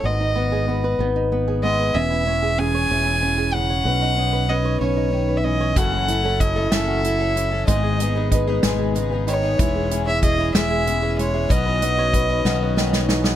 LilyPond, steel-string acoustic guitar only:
\new Staff \with { instrumentName = "Steel-string acoustic guitar" } { \time 6/8 \key b \mixolydian \tempo 4. = 63 << { r8 b8 b'8 dis'8 b4~ | b8 cis'8 gis'2 | r8 dis'8 b'2 | <cis' e' a'>8 e'8 a'8 a'8 e'4 |
r8 b8 b'2 | r8 cis'8 gis'8 e'8 cis'4 | r8 dis'8 b'2 | } \\ { gis,2~ gis,8 gis8 | e4. e8 r8 cis8 | b,4. cis8 dis8 e8 | fis2~ fis8 cis'8 |
gis,4. b,8 cis8 dis8 | e2~ e8 gis8 | b,4. cis8 dis8 e8 | } >> }